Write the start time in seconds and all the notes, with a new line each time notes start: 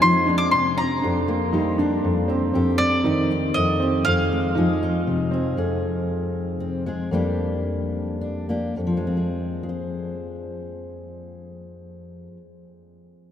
Already playing: F2 G#3
0.01 F3 D#4 G#4 C6
0.26 C4 D4
0.38 D6
0.51 C3 C6
0.77 C4 G#4 A#5
1.02 F2 D4 G4
1.28 A#3
1.53 G3 D#4 G4
1.78 D4
2.04 F2
2.28 C4 G4
2.53 F2 C4 G4
2.78 C4 D5
3.04 D#3 D#4 G4
3.31 D#4
3.54 F2 D#5
3.80 C4 G4
4.05 F2 C4 G#4 F5
4.33 G#3
4.55 F3 D#4 G#4
4.83 D#4
5.07 C3
5.31 C4 G#4
5.57 F2 G#4
6.60 C4
6.86 G#3 C4 G#4
7.11 F2 G3 A#3 D4 G4
8.21 D4
8.49 A#3 D4 G4
8.77 F2
8.87 F3
8.97 G#3
9.07 C4
9.17 G#4
9.63 G#4
9.69 C5